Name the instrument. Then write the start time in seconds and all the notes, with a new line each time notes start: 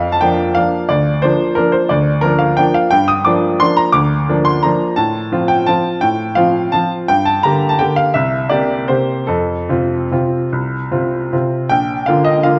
grand piano
Already playing: F2 F5
0.12 A5
0.21 F3 A#3 D4 G5
0.55 F3 A#3 D4 F5
0.89 D2 D5
1.22 F3 A#3 D4 C5
1.55 F3 A#3 D4 A#4
1.72 C5
1.89 D2 D5
2.21 F3 A#3 D4 A#4
2.39 F5
2.57 F3 A#3 D4 G5
2.74 F5
2.91 G2 G5
3.08 D#6
3.25 F3 A#3 D4 D6
3.60 F3 A#3 D4 C6
3.77 A#5
3.92 D2 D6
4.29 F3 A#3 D4
4.45 C6
4.63 F3 A#3 D4 A#5
4.96 A2 A5
5.32 F3 C4 F4
5.48 G5
5.66 F3 C4 F4 A5
6.01 A2 G5
6.35 F3 C4 F4 F5
6.72 F3 C4 F4 A5
7.08 G2 G5
7.25 A5
7.43 D3 A#3 G4 A#5
7.69 A5
7.79 D3 A#3 G4 G5
7.96 F5
8.14 C2 E5
8.50 C3 A#3 G4 D5
8.88 C3 A#3 G4 C5
9.27 F2 A4
9.69 C3 C4 F4
10.11 C3 C4 F4
10.52 C2
10.91 C3 C4 F4
11.33 C3 C4 F4
11.69 A#1 G5
12.06 D3 A#3 F4 F5
12.24 D#5
12.43 D3 A#3 F4 F5